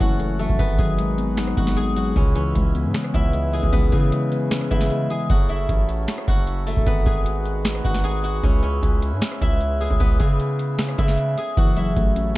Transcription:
Already playing: harmonium E3 A3 C#4 F#4, tine electric piano E3 F#3 A3 E4, guzheng B3 E4 G#4 E5 G#5
0.00 808-style bass F#1, tine electric piano C#4, guzheng F#4 F#5, kick, closed hi-hat
0.20 tine electric piano A3, closed hi-hat
0.39 tine electric piano F#3, guzheng A3 A4, open hi-hat
0.49 808-style bass E1, kick
0.59 808-style bass G#1, tine electric piano D#3, harmonium D#3 G#3 B3 F#4, guzheng B3 B4, kick, closed hi-hat
0.78 808-style bass G#1, tine electric piano F#3, guzheng G#4 G#5, kick, closed hi-hat
0.99 tine electric piano G#3, closed hi-hat
1.18 tine electric piano B3, closed hi-hat
1.37 tine electric piano D#4, finger snap, snare, closed hi-hat
1.47 cross-stick
1.57 808-style bass G#1, tine electric piano B3, guzheng F#4 F#5, kick, closed hi-hat
1.67 snare
1.76 tine electric piano G#3, guzheng G#4 G#5, closed hi-hat
1.96 tine electric piano F#3, guzheng F#4 F#5, closed hi-hat
2.16 808-style bass C#2, tine electric piano C#3, harmonium C#3 E4, guzheng C#4 C#5, kick, closed hi-hat
2.35 tine electric piano E3, guzheng C#4 C#5, closed hi-hat
2.55 808-style bass C#2, tine electric piano G#3, kick, closed hi-hat
2.75 tine electric piano B3, closed hi-hat
2.85 808-style bass G#2
2.94 tine electric piano C#4, finger snap, snare, closed hi-hat
3.04 cross-stick
3.14 808-style bass C#2, tine electric piano B3, guzheng E4 E5, kick, closed hi-hat
3.33 tine electric piano G#3, closed hi-hat
3.53 tine electric piano E3, guzheng G#4 G#5, open hi-hat
3.63 808-style bass C#2, kick
3.72 808-style bass C#2, tine electric piano C#3, guzheng B3 B4, kick, closed hi-hat
3.92 808-style bass C#3, tine electric piano E3, guzheng G#4 G#5, kick, closed hi-hat
4.12 tine electric piano G#3, closed hi-hat
4.32 tine electric piano B3, closed hi-hat
4.51 tine electric piano C#4, finger snap, snare, closed hi-hat
4.61 cross-stick
4.71 808-style bass C#3, tine electric piano B3, guzheng E4 E5, kick, closed hi-hat
4.81 snare
4.90 tine electric piano G#3, closed hi-hat
5.10 tine electric piano E3, guzheng G#4 G#5, closed hi-hat
5.30 808-style bass F#1, harmonium C#3 F#3 A3 E4, guzheng F#4 F#5, kick, closed hi-hat
5.49 guzheng E4 E5, closed hi-hat
5.69 808-style bass A1, kick, closed hi-hat
5.89 closed hi-hat
6.08 finger snap, snare, closed hi-hat
6.18 cross-stick
6.28 808-style bass F#1, guzheng F#4 F#5, kick, closed hi-hat
6.47 closed hi-hat
6.67 guzheng A3 A4, open hi-hat
6.77 808-style bass E1, kick
6.86 808-style bass G#1, harmonium D#3 G#3 B3 F#4, guzheng B3 B4, kick, closed hi-hat
7.06 808-style bass G#1, guzheng G#4 G#5, kick, closed hi-hat
7.26 closed hi-hat
7.46 closed hi-hat
7.65 finger snap, snare, closed hi-hat
7.75 cross-stick
7.84 808-style bass G#1, guzheng F#4 F#5, kick, closed hi-hat
7.95 snare
8.04 guzheng G#4 G#5, closed hi-hat
8.24 guzheng F#4 F#5, closed hi-hat
8.43 808-style bass C#2, harmonium C#3 E4, guzheng C#4 C#5, kick, closed hi-hat
8.63 guzheng C#4 C#5, closed hi-hat
8.83 808-style bass C#2, kick, closed hi-hat
9.02 closed hi-hat
9.12 808-style bass G#2
9.22 finger snap, snare, closed hi-hat
9.32 cross-stick
9.41 808-style bass C#2, guzheng E4 E5, kick, closed hi-hat
9.61 closed hi-hat
9.81 guzheng G#4 G#5, open hi-hat
9.91 808-style bass C#2, kick
10.00 808-style bass C#2, guzheng B3 B4, kick, closed hi-hat
10.20 808-style bass C#3, guzheng G#4 G#5, kick, closed hi-hat
10.40 closed hi-hat
10.59 closed hi-hat
10.78 finger snap, snare, closed hi-hat
10.88 cross-stick
10.98 808-style bass C#3, guzheng E4 E5, kick, closed hi-hat
11.08 snare
11.18 closed hi-hat
11.38 guzheng G#4 G#5, closed hi-hat
11.57 808-style bass F#1, tine electric piano E3, harmonium F#3 A3, guzheng F#4 F#5, kick, closed hi-hat
11.76 tine electric piano F#3, guzheng E4 E5, closed hi-hat
11.96 808-style bass A1, tine electric piano A3, kick, closed hi-hat
12.16 tine electric piano C#4, closed hi-hat

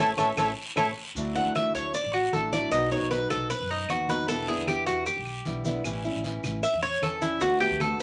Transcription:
Already playing: cuban tres A4
0.00 upright bass A1, steel-string acoustic guitar E3 A3 C#4, cuban tres E4 C#5
0.17 upright bass A1, steel-string acoustic guitar E3 A3 C#4, cuban tres E4 A4 C#5, muted trumpet A4, low bongo, high conga, long guiro, claves, maracas
0.37 upright bass A1, steel-string acoustic guitar E3 A3 C#4, cuban tres E4 A4 C#5, muted trumpet A4, low bongo, high conga, long guiro, claves, maracas
0.76 upright bass A1, steel-string acoustic guitar E3 A3 C#4, cuban tres E4 A4 C#5, muted trumpet A4, low bongo, high conga, long guiro, claves, maracas
1.15 upright bass D2, steel-string acoustic guitar D3 F#3 A3 D4 E4, high conga, long guiro, maracas
1.35 steel-string acoustic guitar F#3 A3 D4 E4, cuban tres F#5, high conga, maracas
1.45 upright bass D2
1.55 steel-string acoustic guitar F#3 A3 D4 E4, cuban tres E5, high conga, short guiro, claves, maracas
1.75 upright bass D2, cuban tres C#5, short guiro, maracas
1.94 cuban tres D5, muted steel-string acoustic guitar stroke, high conga, long guiro, maracas
2.04 upright bass A1
2.14 cuban tres F#4, high conga, claves, maracas
2.33 upright bass A1, steel-string acoustic guitar F#3 A3 D4 E4, cuban tres A4, high conga, short guiro, maracas
2.52 steel-string acoustic guitar F#3 A3 D4 E4, cuban tres D5, high conga, short guiro, maracas
2.71 upright bass B1, steel-string acoustic guitar B2 F#3 B3 D#4 F#4, cuban tres D#5, long guiro, claves, maracas
2.91 steel-string acoustic guitar F#3 B3 D#4 F#4, cuban tres C#5, high conga, maracas
3.01 upright bass B1
3.10 steel-string acoustic guitar F#3 B3 D#4 F#4, cuban tres B4, high conga, short guiro, maracas
3.30 upright bass B1, cuban tres A4, high conga, low conga, short guiro, claves, maracas
3.50 cuban tres B4, muted steel-string acoustic guitar stroke, high conga, long guiro, maracas
3.60 upright bass F#2
3.69 cuban tres D#4, high conga, maracas
3.89 upright bass D#2, steel-string acoustic guitar F#3 B3 D#4 F#4, cuban tres F#4, high conga, short guiro, claves, maracas
4.08 steel-string acoustic guitar F#3 B3 D#4 F#4, cuban tres B4, high conga, short guiro, maracas
4.28 upright bass E2, steel-string acoustic guitar B2 D3 G3 B3 E4, cuban tres A4, high conga, long guiro, maracas
4.48 steel-string acoustic guitar D3 G3 B3 E4, cuban tres G#4, high conga, maracas
4.57 upright bass E2
4.67 steel-string acoustic guitar D3 B3 E4, cuban tres G4, high conga, short guiro, claves, maracas
4.86 upright bass E2, cuban tres F#4, high conga, short guiro, maracas
5.06 cuban tres G4, muted steel-string acoustic guitar stroke, high conga, long guiro, maracas
5.16 upright bass B1
5.26 high conga, claves, maracas
5.45 upright bass B1, steel-string acoustic guitar D3 G3 B3 E4, high conga, short guiro, maracas
5.65 steel-string acoustic guitar D3 G3 B3 E4, high conga, short guiro, maracas
5.84 upright bass A1, steel-string acoustic guitar E3 G3 C#4 E4, long guiro, claves, maracas
6.04 steel-string acoustic guitar G3 C#4 E4, high conga, maracas
6.14 upright bass A1
6.23 steel-string acoustic guitar E3 G3 C#4 E4, high conga, short guiro, maracas
6.44 upright bass A1, high conga, low conga, short guiro, claves, maracas
6.63 cuban tres E5, muted steel-string acoustic guitar stroke, high conga, long guiro, maracas
6.73 upright bass E2
6.83 cuban tres C#5, high conga, maracas
7.02 upright bass E2, steel-string acoustic guitar E3 G3 C#4 E4, cuban tres A4, high conga, short guiro, claves, maracas
7.21 steel-string acoustic guitar G3 C#4 E4, cuban tres E4, high conga, short guiro, maracas
7.40 upright bass D2, steel-string acoustic guitar D3 A3 B3 F#4, cuban tres F#4, high bongo, high conga, long guiro, maracas
7.60 steel-string acoustic guitar A3 B3 F#4, cuban tres G4, high conga, maracas
7.71 upright bass D2
7.80 steel-string acoustic guitar D3 A3 B3 F#4, cuban tres A4, high bongo, high conga, short guiro, claves, maracas

